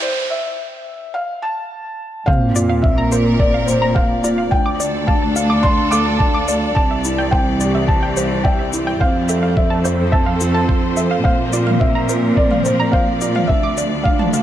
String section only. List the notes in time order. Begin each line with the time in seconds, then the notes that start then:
2.89 A#4
3.09 D5
4.78 A4
4.98 D4
6.76 E3
7.04 C4 G4
9.01 F3
9.66 A4
10.02 C5
11.36 A#4
12.26 D5
13.61 D4
14.26 A4